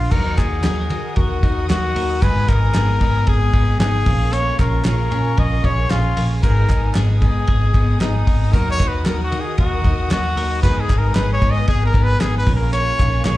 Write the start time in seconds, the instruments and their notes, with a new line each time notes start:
Already playing: clean electric guitar A#2 A#3 F4 A#4, twelve-string acoustic guitar A#3 D4 F4 A#4, trumpet F4
0.11 fingered electric bass D#2, twelve-string acoustic guitar D#3 F#3 D#4 F#4 A#4, string section A#4 D#5 F#5 D#6, trumpet A#4, kick, crash
0.37 fingered electric bass D#2, twelve-string acoustic guitar D#4 F#4 A#4, trumpet G#4, kick, clap, ride
0.63 fingered electric bass D#2, twelve-string acoustic guitar F#3 D#4 F#4 A#4, clean electric guitar G#4, snare, clap, ride
0.78 clean electric guitar A#4
0.89 fingered electric bass D#3, twelve-string acoustic guitar D#4 F#4 A#4, ride
1.16 fingered electric bass D#2, trumpet F#4, clean electric guitar A#4, kick, ride
1.43 fingered electric bass D#2, twelve-string acoustic guitar D#4 F#4 A#4, kick, ride
1.69 fingered electric bass D#2, twelve-string acoustic guitar F#3 D#4 F#4 A#4, trumpet F#4, snare, clap, ride
1.96 fingered electric bass D#2, clean electric guitar A#4, open hi-hat, ride
2.21 fingered electric bass G#1, twelve-string acoustic guitar G#2 D#3 G#3 B3 D#4 G#4, string section B3 G#5, trumpet B4, kick, hi-hat pedal, ride
2.47 fingered electric bass G#1, twelve-string acoustic guitar G#3 B3 D#4 G#4, trumpet A#4, kick, clap, ride
2.74 fingered electric bass G#1, twelve-string acoustic guitar G#3 B3 D#4 G#4, snare, clap, ride
3.01 fingered electric bass G#2, twelve-string acoustic guitar G#3 B3 D#4 G#4, kick, ride
3.27 fingered electric bass G#1, trumpet G#4, clean electric guitar G#4, kick, ride
3.53 fingered electric bass G#1, twelve-string acoustic guitar G#3 B3 D#4 G#4, kick, ride
3.80 fingered electric bass G#1, twelve-string acoustic guitar G#3 B3 D#4 G#4, trumpet G#4, snare, clap, ride
4.06 fingered electric bass A#1, twelve-string acoustic guitar A#3 C#4 F4 G#4, string section A#4 F5 G#5 C#6, kick, open hi-hat, ride
4.32 clean electric guitar A#3, trumpet C#5, hi-hat pedal, ride
4.59 fingered electric bass A#1, twelve-string acoustic guitar C#4 F4 G#4, trumpet A#4, kick, clap, ride
4.84 fingered electric bass A#1, twelve-string acoustic guitar A#3 C#4 F4 G#4, trumpet A#4, snare, clap, ride
5.11 fingered electric bass A#2, twelve-string acoustic guitar C#4 F4 G#4, ride
5.37 fingered electric bass A#1, clean electric guitar G#4, trumpet D#5, kick, ride
5.64 fingered electric bass A#1, twelve-string acoustic guitar C#4 F4 G#4, trumpet C#5, kick, ride
5.90 fingered electric bass A#1, twelve-string acoustic guitar A#3 C#4 F4 G#4, trumpet F4, snare, clap, ride
6.17 fingered electric bass A#1, clean electric guitar G#4, open hi-hat, ride
6.43 fingered electric bass G#1, twelve-string acoustic guitar G#2 D#3 G#3 B3 D#4 G#4, string section B3 D#5 D#6, trumpet A#4, kick, hi-hat pedal, ride
6.68 fingered electric bass G#1, twelve-string acoustic guitar G#3 B3 D#4 G#4, kick, clap, ride
6.95 fingered electric bass G#1, twelve-string acoustic guitar G#3 B3 D#4 G#4, snare, clap, ride
7.21 fingered electric bass G#2, twelve-string acoustic guitar G#3 B3 D#4 G#4, trumpet G#4, kick, ride
7.47 fingered electric bass G#1, clean electric guitar G#4, kick, ride
7.73 fingered electric bass G#1, twelve-string acoustic guitar G#3 B3 D#4 G#4, kick, ride
8.00 fingered electric bass G#1, twelve-string acoustic guitar G#3 B3 D#4 G#4, trumpet D#4, snare, clap, ride
8.27 fingered electric bass G#1, clean electric guitar G#4, kick, open hi-hat, ride
8.53 fingered electric bass D#2, twelve-string acoustic guitar D#3 F#3 D#4 F#4 A#4, trumpet A#4, string section A#4 F#5, kick, hi-hat pedal, ride
8.71 trumpet C#5
8.79 fingered electric bass D#2, twelve-string acoustic guitar D#4 F#4 A#4, kick, clap, ride
8.88 trumpet B4
9.05 fingered electric bass D#2, twelve-string acoustic guitar F#3 D#4 F#4 A#4, clean electric guitar G#4, trumpet A#4, snare, clap, ride
9.19 clean electric guitar A#4
9.23 trumpet F#4
9.32 fingered electric bass D#3, twelve-string acoustic guitar D#4 F#4 A#4, ride
9.40 trumpet G#4
9.58 fingered electric bass D#2, trumpet F#4, clean electric guitar A#4, kick, ride
9.84 fingered electric bass D#2, twelve-string acoustic guitar D#4 F#4 A#4, kick, ride
10.11 fingered electric bass D#2, twelve-string acoustic guitar F#3 D#4 F#4 A#4, trumpet F#4, snare, clap, ride
10.36 fingered electric bass D#2, clean electric guitar A#4, open hi-hat, ride
10.63 fingered electric bass G#1, twelve-string acoustic guitar G#2 D#3 G#3 B3 D#4 G#4, trumpet B4, string section B4 G#5, kick, hi-hat pedal, ride
10.80 trumpet G#4
10.88 fingered electric bass G#1, twelve-string acoustic guitar G#3 B3 D#4 G#4, kick, clap, ride
10.98 trumpet A#4
11.15 fingered electric bass G#1, twelve-string acoustic guitar G#3 B3 D#4 G#4, trumpet B4, snare, clap, ride
11.33 trumpet C#5
11.41 fingered electric bass G#2, twelve-string acoustic guitar G#3 B3 D#4 G#4, kick, ride
11.51 trumpet D#5
11.68 fingered electric bass G#1, trumpet G#4, clean electric guitar G#4, kick, ride
11.85 trumpet A#4
11.93 fingered electric bass G#1, twelve-string acoustic guitar G#3 B3 D#4 G#4, kick, ride
12.03 trumpet B4
12.20 fingered electric bass G#1, twelve-string acoustic guitar G#3 B3 D#4 G#4, trumpet G#4, snare, clap, ride
12.38 trumpet B4
12.46 fingered electric bass A#1, twelve-string acoustic guitar A#3 C#4 F4 G#4, string section A#4 F5 C#6, kick, open hi-hat, ride
12.55 trumpet A#4
12.73 clean electric guitar A#3, trumpet C#5, hi-hat pedal, ride
12.99 fingered electric bass A#1, twelve-string acoustic guitar C#4 F4 G#4, clean electric guitar D#4, kick, clap, ride
13.13 clean electric guitar F4
13.25 fingered electric bass A#1, twelve-string acoustic guitar A#3 C#4 F4 G#4, trumpet C#5, snare, clap, ride